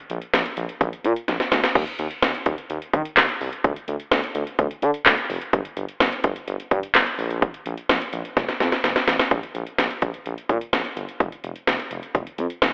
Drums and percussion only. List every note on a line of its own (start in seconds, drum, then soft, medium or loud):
0.10 closed hi-hat medium
0.22 closed hi-hat soft
0.34 snare loud
0.34 closed hi-hat medium
0.46 closed hi-hat medium
0.57 closed hi-hat medium
0.69 closed hi-hat soft
0.81 kick medium
0.81 closed hi-hat medium
0.93 closed hi-hat medium
1.04 closed hi-hat medium
1.16 closed hi-hat medium
1.28 snare medium
1.28 closed hi-hat medium
1.40 snare medium
1.40 closed hi-hat medium
1.52 snare medium
1.52 closed hi-hat medium
1.64 snare medium
1.64 closed hi-hat medium
1.75 kick loud
1.75 crash medium
1.87 closed hi-hat medium
1.99 closed hi-hat medium
2.11 closed hi-hat soft
2.22 snare loud
2.22 closed hi-hat medium
2.35 closed hi-hat medium
2.46 kick medium
2.46 closed hi-hat medium
2.58 closed hi-hat soft
2.70 closed hi-hat medium
2.82 closed hi-hat soft
2.93 kick medium
2.93 closed hi-hat medium
3.05 closed hi-hat medium
3.17 snare loud
3.17 clap loud
3.17 closed hi-hat medium
3.29 closed hi-hat medium
3.41 open hi-hat medium
3.53 closed hi-hat medium
3.64 kick loud
3.64 closed hi-hat medium
3.76 closed hi-hat medium
3.88 closed hi-hat medium
4.00 closed hi-hat soft
4.12 snare loud
4.12 closed hi-hat medium
4.24 closed hi-hat medium
4.35 closed hi-hat medium
4.47 closed hi-hat soft
4.59 kick medium
4.59 closed hi-hat medium
4.71 closed hi-hat soft
4.82 closed hi-hat medium
4.94 closed hi-hat medium
5.06 snare loud
5.06 clap loud
5.06 closed hi-hat medium
5.18 closed hi-hat medium
5.30 open hi-hat medium
5.41 closed hi-hat medium
5.53 kick loud
5.53 closed hi-hat medium
5.65 closed hi-hat medium
5.77 closed hi-hat medium
5.89 closed hi-hat soft
6.00 snare loud
6.00 closed hi-hat medium
6.12 closed hi-hat medium
6.24 kick medium
6.24 closed hi-hat medium
6.36 closed hi-hat soft
6.48 closed hi-hat medium
6.60 closed hi-hat soft
6.71 kick medium
6.71 closed hi-hat medium
6.83 closed hi-hat medium
6.95 snare loud
6.95 clap loud
6.95 closed hi-hat medium
7.07 closed hi-hat medium
7.19 open hi-hat medium
7.31 closed hi-hat medium
7.42 kick loud
7.42 closed hi-hat medium
7.54 closed hi-hat medium
7.66 closed hi-hat medium
7.78 closed hi-hat soft
7.89 snare loud
7.89 closed hi-hat medium
8.01 closed hi-hat medium
8.13 closed hi-hat medium
8.25 closed hi-hat soft
8.37 kick medium
8.37 snare medium
8.37 closed hi-hat medium
8.49 snare medium
8.49 closed hi-hat medium
8.60 snare medium
8.60 closed hi-hat medium
8.72 snare medium
8.72 closed hi-hat medium
8.84 snare medium
8.84 closed hi-hat medium
8.96 snare medium
8.96 closed hi-hat medium
9.08 snare loud
9.08 closed hi-hat medium
9.19 snare medium
9.19 closed hi-hat medium
9.31 kick loud
9.31 closed hi-hat medium
9.43 closed hi-hat soft
9.55 closed hi-hat medium
9.67 closed hi-hat soft
9.78 snare loud
9.78 closed hi-hat medium
9.91 closed hi-hat soft
10.02 kick medium
10.02 closed hi-hat medium
10.14 closed hi-hat soft
10.26 closed hi-hat medium
10.38 closed hi-hat soft
10.49 kick medium
10.49 closed hi-hat medium
10.61 closed hi-hat medium
10.73 snare loud
10.73 closed hi-hat medium
10.85 closed hi-hat medium
10.97 closed hi-hat medium
11.09 closed hi-hat medium
11.20 kick loud
11.20 closed hi-hat medium
11.32 closed hi-hat soft
11.44 closed hi-hat medium
11.56 closed hi-hat soft
11.67 snare loud
11.67 closed hi-hat medium
11.79 closed hi-hat soft
11.91 closed hi-hat medium
12.03 closed hi-hat soft
12.15 kick medium
12.15 closed hi-hat medium
12.27 closed hi-hat soft
12.38 closed hi-hat medium
12.50 closed hi-hat medium
12.62 snare loud
12.62 closed hi-hat medium